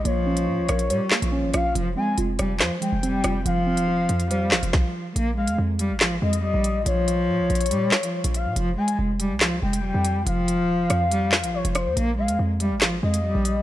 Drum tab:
HH |x-----x-----x-x-x-----x-----x---|x-------x---x-------x---x---x---|x-----x-----x-x-x-----x---------|x-----x-----x---x-----x-----x---|
CP |--------------------x-----------|----------------x---------------|--------------------x-----------|----------------x---------------|
SD |------------r-------o-------r---|------------r---o-----------r---|--------------------o---o-------|----------------o---------------|
BD |--------------------------------|--------------------------------|------------------------o-------|--------------------------------|

HH |x---x-------xxxxx-----x---x-x---|x-----x-----x---x-----x-----x---|x---x-------x---x-----x---x-x---|x-----x-----x---x-----x-----x---|
CP |--------------------x-----------|----------------x---------------|--------------------x-----------|----------------x---------------|
SD |--------------------o-----------|----------------o---------------|------------r-------o-------r---|----------------o---------------|
BD |--------------------------------|--------------------------------|--------------------------------|--------------------------------|